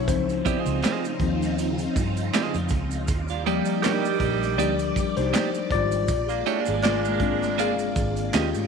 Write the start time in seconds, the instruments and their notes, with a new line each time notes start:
0.08 fingered electric bass C#2, string machine C#3 C4 D#4 F4, tine electric piano F3 C4 D#4 C5, kick, closed hi-hat, maracas
0.29 closed hi-hat, maracas
0.45 clean electric guitar B3 E4 G4 D5, kick, closed hi-hat, maracas
0.59 clean electric guitar C4 F4 G#4 D#5
0.66 fingered electric bass C#2, closed hi-hat, maracas
0.82 clean electric guitar C4 F4 G#4 D#5, finger snap, snare, clap, closed hi-hat, maracas
1.05 closed hi-hat, maracas
1.20 fingered electric bass D#2, tine electric piano F3 C4 D#4, kick, closed hi-hat
1.42 snare, closed hi-hat, maracas
1.58 closed hi-hat, maracas
1.78 closed hi-hat, maracas
1.96 fingered electric bass G2, kick, closed hi-hat, maracas
2.17 closed hi-hat, maracas
2.33 clean electric guitar C4 F4 G#4 D#5, finger snap, snare, clap, closed hi-hat, maracas
2.54 fingered electric bass F2, closed hi-hat, maracas
2.69 fingered electric bass C#2, kick, closed hi-hat, maracas
2.91 closed hi-hat, maracas
3.08 fingered electric bass D#2, string machine G3 G4 D5, kick, closed hi-hat, maracas
3.28 saxophone section A#3 D4 F4, closed hi-hat, maracas
3.45 tine electric piano F3 G3 D5, saxophone section G3 A#3 D#4, clean electric guitar A#3 D#4 G4 D5, closed hi-hat
3.65 closed hi-hat, maracas
3.83 saxophone section G3 D#4 G4, clean electric guitar A#3 D#4 G4 D5, tine electric piano D4 A#4, finger snap, snare, clap, closed hi-hat, maracas
4.05 closed hi-hat, maracas
4.20 fingered electric bass A#1, kick, closed hi-hat
4.43 snare, closed hi-hat, maracas
4.58 fingered electric bass D2, tine electric piano F3 G3 D4 G4 D5, clean electric guitar A#3 D#4 G4 D5, closed hi-hat, maracas
4.79 closed hi-hat, maracas
4.96 kick, closed hi-hat, maracas
5.17 fingered electric bass C2, tine electric piano D#4 C5, snare, closed hi-hat, maracas
5.33 clean electric guitar A#3 D#4 G4 D5, finger snap, snare, clap, closed hi-hat, maracas
5.54 closed hi-hat, maracas
5.71 fingered electric bass G#1, tine electric piano F4 D5, kick, closed hi-hat
5.92 closed hi-hat, maracas
6.08 fingered electric bass A#1, string machine G#3 A#3, kick, closed hi-hat, maracas
6.29 saxophone section A#3 D4 F4, closed hi-hat, maracas
6.45 saxophone section G#3 A#3 D4, clean electric guitar A3 E4 G4 C#5, closed hi-hat
6.60 clean electric guitar A#3 F4 G#4 D5
6.66 fingered electric bass G#1, closed hi-hat, maracas
6.82 saxophone section G#3 A#3 D4, clean electric guitar A#3 F4 G#4 D5, tine electric piano F4 D5, finger snap, snare, clap, closed hi-hat, maracas
7.05 closed hi-hat, maracas
7.20 tine electric piano G#3 C4 D4, kick, closed hi-hat
7.42 snare, closed hi-hat, maracas
7.58 clean electric guitar A#3 F4 G#4 D5, tine electric piano G#4 F5, closed hi-hat, maracas
7.79 closed hi-hat, maracas
7.96 fingered electric bass G#1, kick, closed hi-hat, maracas
8.17 closed hi-hat, maracas
8.32 fingered electric bass D#2, string machine D#3 C#4 F4 G5, clean electric guitar C#4 F4 G4 D#5, tine electric piano C#4 F4 G4, finger snap, snare, clap, closed hi-hat, maracas
8.54 fingered electric bass G#2, closed hi-hat, maracas